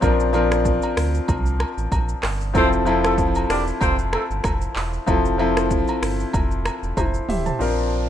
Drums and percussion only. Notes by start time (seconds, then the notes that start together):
0.02 kick, high agogo, shaker
0.20 shaker
0.33 high agogo, shaker
0.52 finger snap, cross-stick, shaker
0.65 kick, shaker
0.82 high agogo, shaker
0.97 finger snap, cross-stick, open hi-hat, shaker
1.14 shaker
1.28 kick, high agogo, shaker
1.46 shaker
1.60 finger snap, cross-stick, high agogo
1.78 shaker
1.92 kick, high agogo, shaker
2.09 shaker
2.23 finger snap, cross-stick, clap, open hi-hat
2.41 shaker
2.55 kick, high agogo, shaker
2.73 shaker
2.86 high agogo, shaker
3.04 finger snap, cross-stick, shaker
3.18 kick, shaker
3.35 high agogo, shaker
3.50 finger snap, cross-stick, open hi-hat, shaker
3.67 shaker
3.81 kick, high agogo, shaker
3.99 shaker
4.13 finger snap, cross-stick, high agogo
4.31 shaker
4.44 finger snap, kick, cross-stick, high agogo, shaker
4.61 shaker
4.76 clap, open hi-hat
4.93 shaker
5.07 kick, high agogo, shaker
5.25 shaker
5.39 high agogo
5.57 finger snap, cross-stick, shaker
5.71 kick, shaker
5.88 high agogo, shaker
6.03 finger snap, cross-stick, open hi-hat, shaker
6.20 shaker
6.33 kick, high agogo, shaker
6.51 shaker
6.65 finger snap, cross-stick, high agogo, shaker
6.83 shaker
6.97 kick, high tom, high agogo, shaker
7.14 shaker
7.29 mid tom, open hi-hat
7.46 floor tom, shaker